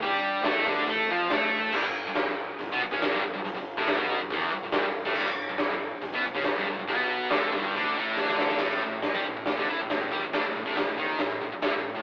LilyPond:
<<
  \new Staff \with { instrumentName = "Distorted electric guitar" } { \clef bass \time 4/4 \key a \mixolydian \tempo 4 = 140 <g g'>4 <a a'>8 <d d'>8 <a a'>8 <f f'>8 <a a'>4 | <g, g>16 g,8 g,8 g,8 r16 g,16 <b, b>16 g,16 <cis cis'>16 r16 <g, g>16 g,16 g,16 | g,16 g,8 <a, a>8 <b, b>8 g,16 <e, e>8 g,16 g,16 <g, g>16 g,8 <a, a>16 | <g, g>16 g,8 g,8 g,8 r16 g,16 <b, b>16 g,16 <cis cis'>16 r16 <g, g>16 g,16 g,16 |
<b, b>4 <d d'>8 <g, g>8 <d d'>8 <a, a>8 <d d'>4 | <a, a>8 a,8 r16 <g g'>16 a,16 a,16 a,16 <d d'>16 <e e'>16 a,16 a,16 a,16 <g g'>16 a,16 | <d d'>16 a,16 a,16 <a, a>16 a,16 a,16 <dis dis'>8 a,8 a,16 r16 <a, a>16 a,8 a,16 | }
  \new Staff \with { instrumentName = "Picked electric bass" } { \clef bass \time 4/4 \key a \mixolydian g,4 a,8 d,8 a,8 f,8 a,4 | g,,16 g,,8 g,,8 g,,8 r16 g,,16 b,,16 g,,16 cis,16 r16 g,,16 g,,16 g,,16 | g,,16 g,,8 a,,8 b,,8 g,,16 e,,8 g,,16 g,,16 g,,16 g,,8 a,,16 | g,,16 g,,8 g,,8 g,,8 r16 g,,16 b,,16 g,,16 cis,16 r16 g,,16 g,,16 g,,16 |
b,,4 d,8 g,,8 d,8 a,,8 d,4 | a,,8 a,,8 r16 g,16 a,,16 a,,16 a,,16 d,16 e,16 a,,16 a,,16 a,,16 g,16 a,,16 | d,16 a,,16 a,,16 a,,16 a,,16 a,,16 dis,8 a,,8 a,,16 r16 a,,16 a,,8 a,,16 | }
  \new DrumStaff \with { instrumentName = "Drums" } \drummode { \time 4/4 <hho bd>4 <hho sn>8 bd8 <hho bd>4 <hho sn>4 | <cymc bd>4 <hho sn>4 <hho bd>8. bd16 <hho sn>16 bd8. | <hho bd>8. bd16 <hho sn>16 bd8. <hho bd>4 <hho sn>8. bd16 | <cymc bd>4 <hho sn>4 <hho bd>8. bd16 <hho sn>16 bd8. |
<hho bd>4 <hho sn>8 bd8 <hho bd>4 sn16 sn16 sn16 sn16 | <cymc bd sn>4 <hho sn>16 bd8. <hho sn>16 bd8. <hho sn>8 bd8 | <hho bd sn>8. bd16 <hho sn>8 bd8 <hho sn>4 <hho sn>4 | }
>>